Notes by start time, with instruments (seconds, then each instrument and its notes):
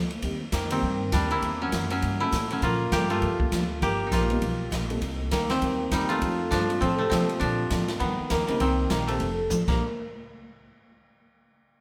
Already playing: upright bass D2
0.10 ride
0.22 upright bass D#2, steel-string acoustic guitar D#3 G3 C4 G4 A#4, honky-tonk piano G3 A#3 C4 D#4 G4, kick, ride
0.52 upright bass F2, steel-string acoustic guitar D#3 G3 C4 G4 A#4, koto D#3 A#3, kick, snare, hi-hat pedal, ride
0.70 koto D#3 C4, honky-tonk piano G3 A#3 C4 D#4 F4, ride
0.82 upright bass G2, steel-string acoustic guitar D#3 G3 C4 G4 A#4, kick
1.12 upright bass D#2, steel-string acoustic guitar D#3 G3 C4 G4 A#4, koto G3 D4, kick, snare, hi-hat pedal, ride
1.31 koto A#3 E4, ride
1.42 upright bass E2, steel-string acoustic guitar E3 A#3 C#4 G4, kick, ride
1.62 koto F#3 C#4
1.72 upright bass F#2, steel-string acoustic guitar E3 A#3 C#4 G4, kick, snare, hi-hat pedal, ride
1.90 koto F#3 C#4, ride
2.02 upright bass G2, steel-string acoustic guitar E3 A#3 C#4 G4, kick, ride
2.20 honky-tonk piano G3 A#3 C#4 E4 G4, koto A3 E4
2.31 upright bass A2, steel-string acoustic guitar E3 A#3 C#4 G4, kick, snare, hi-hat pedal, ride
2.50 koto F#3 C#4, ride
2.61 upright bass A#2, steel-string acoustic guitar D3 F3 A#3 D4 G4, koto A#3 F4, kick, ride
2.92 upright bass G2, steel-string acoustic guitar D3 F3 A#3 D4 G4, koto A#3 G4, kick, snare, hi-hat pedal, ride
3.10 koto A3 F4, ride
3.22 upright bass F2, steel-string acoustic guitar D3 F3 A#3 D4 G4, kick, ride
3.40 honky-tonk piano A#2 G3 D4 F4 G4, kick
3.52 upright bass D2, steel-string acoustic guitar D3 F3 A#3 D4 G4, kick, snare, hi-hat pedal, ride
3.81 upright bass G1, steel-string acoustic guitar F3 B3 D#4 G4, koto A#3 G4, kick, ride
4.07 koto D#4
4.11 upright bass A#1, steel-string acoustic guitar F3 B3 D#4 G4, koto A#3 F4, kick, snare, hi-hat pedal, ride
4.29 honky-tonk piano G3 A#3 B3 D#4 F4, ride
4.41 upright bass B1, steel-string acoustic guitar F3 B3 D#4 G4, kick, ride
4.71 upright bass A#1, steel-string acoustic guitar F3 B3 D#4 G4, kick, snare, hi-hat pedal, ride
4.90 honky-tonk piano G3 A#3 C4 D#4 A4, ride
5.01 upright bass C2, steel-string acoustic guitar C3 G3 A#3 D#4 G4, kick, ride
5.31 upright bass D2, steel-string acoustic guitar C3 G3 A#3 D#4 G4, koto D#3 A#3, kick, snare, hi-hat pedal, ride
5.50 koto D#3 C4, snare, ride
5.61 upright bass D#2, steel-string acoustic guitar C3 G3 A#3 D#4 G4, kick, ride
5.91 upright bass E2, steel-string acoustic guitar C3 G3 A#3 D#4 G4, koto G3 D#4, kick, snare, hi-hat pedal, ride
6.09 honky-tonk piano F3 A3 C4 D4 F4, koto A3 F4, ride
6.22 upright bass F2, steel-string acoustic guitar F3 A3 D4 A4, kick, ride
6.51 upright bass G2, steel-string acoustic guitar F3 A3 D4 A4, koto F3 D4, kick, snare, hi-hat pedal, ride
6.70 honky-tonk piano F3 A3 C4 D4 F4, ride
6.81 upright bass A2, steel-string acoustic guitar F3 A3 D4 A4, koto F3 C4, kick, ride
6.98 koto C3 A3
7.10 upright bass C3, steel-string acoustic guitar F3 A3 D4 A4, koto F3 C4, kick, snare, hi-hat pedal, ride
7.29 ride
7.40 upright bass A#2, steel-string acoustic guitar D3 F3 A#3 D4 G4, koto F3 D4, kick, ride
7.71 upright bass A2, steel-string acoustic guitar D3 F3 A#3 D4 G4, kick, snare, hi-hat pedal, ride
7.88 snare, ride
8.00 upright bass G2, koto D#3 B3, steel-string acoustic guitar F3 B3 D#4 G4, kick, ride
8.20 muted upright bass stroke
8.30 upright bass D#2, koto D#3 A#3, steel-string acoustic guitar F3 B3 D#4 G4, kick, snare, hi-hat pedal, ride
8.47 koto C#3 A#3, honky-tonk piano D#3 G3 A#3 C4 D#4, muted upright bass stroke, ride
8.60 upright bass C2, steel-string acoustic guitar C3 G3 A#3 D#4 G4, koto D#3 C4, kick, ride
8.90 upright bass A#1, steel-string acoustic guitar C3 G3 A#3 D#4 G4, koto D#3 A#3, kick, snare, hi-hat pedal, ride
9.07 koto C3 A3, ride
9.20 upright bass F1, steel-string acoustic guitar F3 A3 D4 A4, kick, ride
9.50 upright bass A1, steel-string acoustic guitar F3 A3 D4 A4, hi-hat pedal, mid tom
9.67 upright bass A#1, steel-string acoustic guitar A#2 D3 F3 A#3 D4 G4, honky-tonk piano D3 F3 G3 A#3 D4, koto A#3, kick, snare, crash